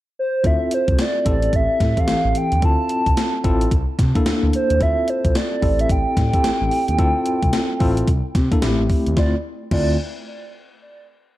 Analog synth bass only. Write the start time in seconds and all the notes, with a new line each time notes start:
0.44 D2
0.88 C2
1.26 A1
1.53 A1
1.81 A2
2.08 A1
2.25 A1
2.52 D#2
2.63 D2
3.07 C2
3.45 A1
3.72 C2
3.99 C3
4.27 D2
4.43 D2
4.70 D#2
4.81 D2
5.25 C2
5.63 A1
5.90 A1
6.17 A2
6.45 A1
6.61 A1
6.89 D#2
6.99 D2
7.43 C2
7.81 A1
8.08 C2
8.35 C3
8.63 A1
8.79 A1
9.07 D#2
9.17 D2
9.72 D2